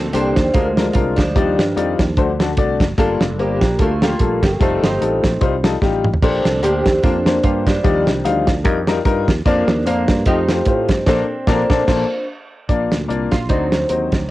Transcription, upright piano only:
0.00 0.32 A#2 medium
0.13 0.37 A#3 medium
0.13 0.37 D4 medium
0.13 0.37 A4 medium
0.13 0.37 C5 medium
0.54 1.14 D3 medium
0.54 0.66 G#3 medium
0.54 0.66 D4 medium
0.54 0.66 F4 medium
0.54 0.66 A#4 medium
0.77 0.86 G#3 medium
0.77 0.86 D4 medium
0.77 0.86 F4 medium
0.77 0.86 A#4 medium
0.95 1.18 G#3 medium
0.95 1.18 D4 medium
0.95 1.18 F4 medium
0.95 1.18 A#4 medium
1.36 1.95 D#3 medium
1.36 1.59 G3 medium
1.36 1.59 D#4 medium
1.36 1.59 F4 medium
1.36 1.59 D5 loud
1.76 1.99 G3 medium
1.76 1.99 D#4 medium
1.76 1.99 F4 medium
1.76 2.00 D5 medium
2.17 2.77 D3 medium
2.17 2.29 A3 medium
2.17 2.29 D4 medium
2.17 2.29 F#4 medium
2.17 2.29 C5 loud
2.40 2.49 A3 medium
2.40 2.49 D4 medium
2.40 2.49 F#4 medium
2.40 2.49 A4 medium
2.58 2.81 A3 medium
2.58 2.81 D4 medium
2.58 2.81 F#4 medium
2.58 2.81 D5 loud
2.98 3.58 G2 medium
2.98 3.21 G3 loud
2.98 3.21 A#3 medium
2.98 3.21 F4 medium
2.98 3.21 A4 loud
3.38 3.62 G3 medium
3.38 3.62 A#3 medium
3.38 3.62 F4 medium
3.38 3.62 C5 medium
3.79 3.91 G3 medium
3.79 3.91 A#3 medium
3.79 3.91 F4 medium
3.79 3.91 A4 medium
4.02 4.11 G3 medium
4.02 4.11 A#3 medium
4.02 4.11 F4 medium
4.02 4.11 G4 medium
4.20 4.43 G3 medium
4.20 4.43 A#3 medium
4.20 4.43 F4 medium
4.20 4.43 A4 medium
4.60 4.83 G3 loud
4.60 4.83 D#4 medium
4.60 4.83 F4 medium
4.60 4.84 A4 loud
5.01 5.24 G3 medium
5.01 5.24 D#4 medium
5.01 5.24 F4 medium
5.01 5.24 A4 medium
5.41 5.53 G3 medium
5.41 5.53 D#4 medium
5.41 5.53 F4 medium
5.41 5.53 C5 loud
5.63 5.73 G3 medium
5.63 5.73 D#4 medium
5.63 5.73 F4 medium
5.63 5.73 A4 medium
5.82 6.05 G3 medium
5.82 6.05 D#4 medium
5.82 6.05 F4 medium
5.82 6.05 G4 medium
6.23 6.82 A#2 medium
6.23 6.46 A#3 medium
6.23 6.46 D4 medium
6.23 6.46 G4 medium
6.23 6.46 C5 loud
6.62 6.86 A#3 medium
6.62 6.86 D4 medium
6.62 6.86 G4 medium
6.62 6.86 A#4 medium
7.04 7.15 A#3 medium
7.04 7.15 D4 medium
7.04 7.15 G4 medium
7.04 7.15 A#4 medium
7.26 7.35 A#3 medium
7.26 7.35 D4 medium
7.26 7.35 G4 medium
7.26 7.35 C5 medium
7.43 7.67 A#3 medium
7.43 7.66 D4 medium
7.43 7.67 G4 medium
7.43 7.67 C5 medium
7.84 8.43 D#3 medium
7.84 8.07 G3 loud
7.84 8.07 D#4 medium
7.84 8.07 F4 medium
7.84 8.07 D5 loud
8.25 8.48 G3 medium
8.25 8.48 D#4 medium
8.25 8.48 F4 medium
8.25 8.48 F5 medium
8.64 8.76 G3 medium
8.64 8.76 D#4 medium
8.64 8.76 F4 medium
8.64 8.76 A#4 loud
8.88 8.97 G3 medium
8.88 8.97 D#4 medium
8.88 8.97 F4 medium
8.88 8.97 A#4 loud
9.05 9.28 G3 medium
9.05 9.28 D#4 medium
9.05 9.28 F4 medium
9.05 9.28 A#4 loud
9.45 9.68 A#3 medium
9.45 9.69 D4 medium
9.45 9.69 F4 medium
9.45 9.69 D5 loud
9.85 10.09 A#3 medium
9.85 10.09 D4 medium
9.85 10.09 F4 medium
9.85 10.09 C5 medium
10.27 10.38 A3 medium
10.27 10.38 F4 medium
10.27 10.38 G4 medium
10.27 10.38 D#5 medium
10.49 10.58 A3 medium
10.49 10.58 F4 medium
10.49 10.58 G4 medium
10.49 10.58 C5 medium
10.67 10.90 A3 medium
10.67 10.90 F4 medium
10.67 10.90 G4 medium
10.67 10.90 C5 medium
11.07 11.23 A#2 medium
11.07 11.23 A#3 loud
11.07 11.23 D4 loud
11.07 11.23 A4 loud
11.07 11.23 C5 medium
11.47 11.63 A#3 medium
11.47 11.63 D4 medium
11.47 11.63 A4 loud
11.47 11.63 D5 loud
11.70 11.82 A#3 loud
11.70 11.82 D4 loud
11.70 11.82 A4 loud
11.70 11.82 D5 loud
11.87 12.03 A#3 loud
11.87 12.03 D4 medium
11.87 12.03 A4 loud
11.87 12.03 C5 loud
12.69 13.28 A#2 medium
12.69 12.92 A#3 medium
12.69 12.92 D4 medium
12.69 12.92 F4 medium
12.69 12.92 D5 medium
13.08 13.32 A#3 medium
13.08 13.32 D4 medium
13.08 13.32 F4 medium
13.08 13.32 D5 medium
13.50 14.09 D3 medium
13.50 13.72 C4 medium
13.50 13.72 D#4 medium
13.50 13.72 F#4 medium
13.50 13.73 D5 medium
13.89 14.12 C4 medium
13.89 14.13 D#4 medium
13.89 14.13 F#4 medium
13.89 14.13 C5 medium

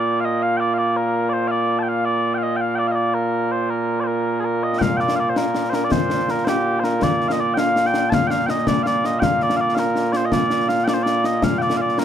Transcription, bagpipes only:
0.00 12.05 A#2 medium
0.00 12.05 A#3 medium
0.00 12.05 F4 medium
0.00 0.20 D5 medium
0.20 0.25 F5 loud
0.25 0.42 D#5 loud
0.42 0.57 F5 loud
0.57 0.74 D5 medium
0.57 0.60 G5 medium
0.74 0.78 F5 medium
0.78 0.96 D5 medium
0.96 1.29 A#4 medium
1.29 1.48 C5 medium
1.29 1.33 D5 medium
1.48 1.79 D5 medium
1.48 1.51 F5 medium
1.79 1.88 G5 medium
1.79 1.83 A5 medium
1.88 2.05 F5 medium
2.05 2.34 D5 loud
2.34 2.43 F5 medium
2.34 2.38 G5 medium
2.43 2.56 D#5 medium
2.56 2.61 G5 medium
2.61 2.75 F5 medium
2.75 2.88 D5 medium
2.75 2.79 G5 medium
2.88 2.96 D#5 medium
2.88 2.91 F5 medium
2.96 3.14 D5 medium
3.14 3.52 A#4 medium
3.52 3.70 C5 medium
3.70 4.00 A#4 medium
4.00 4.07 C5 medium
4.00 4.03 D5 medium
4.07 4.40 A#4 medium
4.40 4.45 G#4 medium
4.45 4.63 A#4 medium
4.63 4.78 D#5 medium
4.78 4.97 F5 loud
4.78 4.82 G5 loud
4.97 5.16 D5 medium
4.97 5.00 G5 medium
5.16 5.29 D5 medium
5.16 5.20 F5 medium
5.29 5.37 C5 medium
5.37 5.70 A#4 medium
5.70 5.74 C5 medium
5.74 5.84 A#4 medium
5.84 5.91 D5 medium
5.91 6.30 C5 loud
6.30 6.44 A#4 medium
6.44 6.80 G4 medium
6.44 6.48 C5 medium
6.80 6.84 C5 medium
6.84 7.03 A#4 medium
7.03 7.28 D5 loud
7.28 7.40 D#5 medium
7.28 7.32 F5 medium
7.40 7.54 D5 medium
7.54 7.58 G5 loud
7.58 7.86 F5 loud
7.86 7.96 G5 loud
7.96 8.10 G5 loud
8.10 8.27 F5 loud
8.10 8.14 A5 loud
8.27 8.46 F5 loud
8.27 8.31 G5 loud
8.46 8.68 D#5 medium
8.46 8.50 G5 medium
8.68 8.83 D5 medium
8.83 9.06 D5 medium
8.83 8.87 F5 medium
9.06 9.19 D#5 medium
9.19 9.43 F5 loud
9.19 9.23 G5 loud
9.43 9.57 D5 medium
9.57 9.75 D5 medium
9.57 9.61 F5 medium
9.75 9.79 F5 medium
9.79 10.12 A#4 medium
10.12 10.17 D5 medium
10.17 10.25 C5 medium
10.25 10.33 D#5 medium
10.33 10.69 D5 loud
10.69 10.84 F5 medium
10.84 10.94 D5 medium
10.84 10.88 G5 medium
10.94 11.03 C5 medium
11.03 11.25 D5 loud
11.25 11.44 D#5 medium
11.44 11.58 F5 loud
11.58 11.77 D5 medium
11.58 11.62 G5 medium
11.77 11.81 F5 medium
11.81 11.99 D5 medium
11.99 12.05 A#4 medium

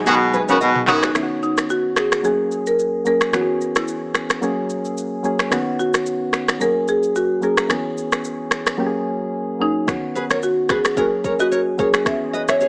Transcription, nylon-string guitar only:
0.06 0.15 D#4 medium
0.06 0.14 G#4 medium
0.34 0.42 G#4 medium
0.34 0.42 B4 medium
0.49 0.56 A#4 medium
0.49 0.55 C#5 medium
0.61 0.69 B4 medium
0.61 0.69 D#5 medium
0.88 0.97 A#4 medium
0.88 0.96 C#5 medium
1.03 1.10 G#4 medium
1.03 1.10 B4 medium
10.15 10.24 G#4 medium
10.15 10.23 B4 medium
10.30 10.37 A#4 medium
10.30 10.37 C#5 medium
10.70 10.78 G#4 medium
10.70 10.78 B4 medium
10.97 11.06 F#4 medium
10.97 11.05 A#4 medium
11.24 11.33 A#4 medium
11.24 11.32 C#5 medium
11.39 11.46 B4 medium
11.39 11.46 D#5 medium
11.52 11.60 A#4 medium
11.52 11.60 C#5 medium
11.79 11.87 A#4 medium
11.79 11.87 C#5 medium
12.33 12.42 B4 medium
12.33 12.41 D#5 medium
12.48 12.56 C#5 medium
12.48 12.55 E5 medium
12.61 12.68 G#4 medium
12.61 12.68 C#5 medium

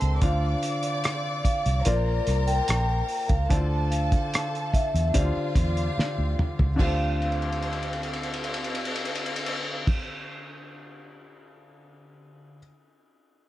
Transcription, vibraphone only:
0.00 0.17 A5 medium
0.21 1.43 F5 medium
1.44 1.87 F5 medium
1.85 2.49 D5 medium
2.47 3.32 G5 medium
3.29 3.50 F5 medium
3.50 3.92 A5 medium
3.90 4.66 F5 medium
4.67 4.74 F5 medium
4.73 5.16 E5 medium
5.14 6.33 D5 medium
6.79 10.00 F5 medium

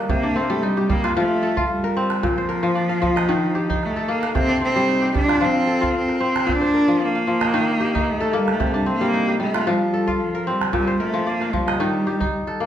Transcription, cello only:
0.00 0.13 G3 medium
0.11 0.38 A#3 medium
0.37 0.43 A3 medium
0.42 0.52 A#3 medium
0.50 0.66 A3 medium
0.64 0.92 G3 medium
0.91 1.17 A#3 medium
1.18 1.67 A3 medium
1.72 2.28 G3 medium
2.27 3.87 F3 loud
3.85 4.13 A3 medium
4.11 4.37 A#3 medium
4.38 4.61 C4 loud
4.65 5.13 C4 loud
5.18 5.46 D4 medium
5.45 5.96 C4 loud
5.98 6.54 C4 medium
6.53 7.06 D4 loud
7.05 8.12 A#3 medium
8.11 8.38 A3 medium
8.37 8.54 G3 medium
8.53 8.74 A3 medium
8.73 8.92 G3 medium
8.90 9.41 A#3 loud
9.42 9.71 A3 medium
9.70 10.23 G3 medium
10.21 10.51 F3 medium
10.49 10.75 G3 medium
10.76 11.00 G3 medium
11.02 11.32 A3 medium
11.31 11.56 A#3 medium
11.55 12.61 G3 medium

